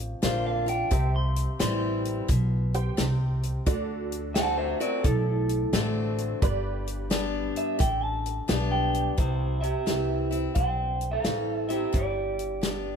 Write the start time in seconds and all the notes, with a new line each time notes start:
Already playing: A1 F2 A#4 D5
0.22 A#1 D3 A#3 D4 F4 C5, snare, closed hi-hat
0.46 F5
0.66 D4 F4 G5, closed hi-hat
0.91 C2 C3 G4 C5 E5, kick, closed hi-hat
1.16 C6
1.36 closed hi-hat
1.59 A1 E3 G3 C4 E4 C6, snare, closed hi-hat
2.05 closed hi-hat
2.28 B1 B2, kick, closed hi-hat
2.74 G4 C5 G5, closed hi-hat
2.97 C2 C3, snare, closed hi-hat
3.43 closed hi-hat
3.66 D2 D3 F#4 A4 D5, kick, closed hi-hat
4.12 closed hi-hat
4.34 D3 A3 C4 F#4 F#5 A5, snare, closed hi-hat
4.58 C5 E5
4.80 C4 F#4 A#4 D5, closed hi-hat
5.03 B1 A2 A4, kick, closed hi-hat
5.49 closed hi-hat
5.73 A1 D3 A3 C4 F#4, snare, closed hi-hat
6.18 closed hi-hat
6.42 G1 G2 G4 B4 D5, kick, closed hi-hat
6.87 closed hi-hat
7.10 G3 B3 D4 G4, snare, closed hi-hat
7.56 E5, closed hi-hat
7.79 A1 D3 G5, kick, closed hi-hat
8.04 A5
8.26 closed hi-hat
8.48 B1 G3 B3 D4 G4 B4 F5, snare, closed hi-hat
8.72 G5
8.94 closed hi-hat
9.18 C2 C3 E4 C5, kick, closed hi-hat
9.61 G4 E5, closed hi-hat
9.86 C2 E3 G3 C4 E4, snare, closed hi-hat
10.31 C4 E4, closed hi-hat
10.55 B1 G2 C5 G5, kick, closed hi-hat
11.01 closed hi-hat
11.12 A4 F5
11.24 A1 E3 G3 C4, snare, closed hi-hat
11.55 E5
11.69 C4 E4 G4 E5, closed hi-hat
11.93 G1 G2 G4 D5, kick, closed hi-hat
12.39 closed hi-hat
12.61 G3 B3 D4 G4, snare, closed hi-hat